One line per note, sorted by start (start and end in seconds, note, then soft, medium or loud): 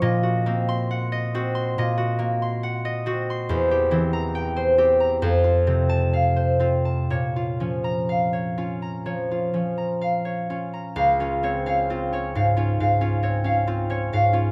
0.02 1.77 A#2 medium
0.02 1.11 D#5 medium
0.23 1.34 F#4 soft
0.46 2.17 A#3 medium
0.46 1.33 C4 soft
0.69 1.54 C6 medium
0.91 2.62 F#5 medium
1.12 1.77 D#5 medium
1.34 3.05 C4 medium
1.34 1.96 F#4 medium
1.55 2.41 C6 medium
1.78 3.55 A#2 medium
1.78 2.84 D#5 medium
1.98 3.05 F#4 medium
2.19 5.26 A#3 soft
2.42 3.29 C6 medium
2.63 3.54 F#5 medium
2.85 3.54 D#5 medium
3.06 3.90 C4 soft
3.06 3.54 F#4 medium
3.30 7.14 C6 medium
3.49 5.27 E2 medium
3.49 4.55 C5 medium
3.71 4.77 G4 soft
3.91 5.27 E3 medium
3.91 4.77 C4 medium
4.13 4.99 A#5 medium
4.35 5.27 G5 medium
4.56 5.21 C5 soft
4.78 5.66 C4 soft
4.78 5.27 G4 medium
5.00 5.27 A#5 medium
5.22 7.13 F2 medium
5.22 6.35 C5 medium
5.44 6.59 F4 soft
5.67 7.13 C3 soft
5.67 6.59 C4 soft
5.89 6.84 A5 medium
6.13 8.08 F5 soft
6.36 7.14 C5 soft
6.60 7.14 C4 soft
6.60 7.35 F4 soft
6.85 7.14 A5 soft
7.10 11.00 A#2 soft
7.10 8.32 C#5 soft
7.36 8.56 F4 soft
7.60 9.04 F3 soft
7.60 8.57 C#4 soft
7.84 8.81 A#5 medium
8.09 10.00 F5 soft
8.33 9.05 C#5 soft
8.58 9.53 C#4 soft
8.58 9.30 F4 soft
8.82 9.76 A#5 soft
9.06 9.53 F3 soft
9.06 10.24 C#5 soft
9.31 10.49 F4 soft
9.54 13.44 F3 soft
9.54 10.49 C#4 soft
9.78 10.72 A#5 soft
10.01 10.94 F5 soft
10.25 11.42 C#5 soft
10.50 11.19 C#4 soft
10.50 11.19 F4 soft
10.73 11.01 A#5 soft
10.96 14.52 C#2 medium
10.96 11.65 F5 medium
11.20 11.65 C#4 soft
11.20 11.89 F4 soft
11.43 11.82 C4 soft
11.43 12.12 C#5 soft
11.66 12.11 C#4 soft
11.66 12.35 F5 soft
11.90 12.28 C4 soft
11.90 12.55 F4 soft
12.12 12.56 C#4 soft
12.12 13.22 C#5 soft
12.35 12.79 G#2 soft
12.35 12.79 F5 soft
12.57 13.00 C#4 soft
12.57 13.00 F4 soft
12.80 14.12 G#2 soft
12.80 13.44 F5 soft
13.01 13.43 C#4 soft
13.01 13.66 F4 soft
13.23 13.61 C4 soft
13.23 13.89 C#5 soft
13.44 13.89 C#4 soft
13.44 14.12 F5 soft
13.67 14.05 C4 soft
13.67 14.32 F4 soft
13.90 14.32 C#4 soft
13.90 14.52 C#5 soft
14.13 14.52 G#2 soft
14.13 14.52 F5 medium
14.33 14.52 C#4 soft
14.33 14.52 F4 soft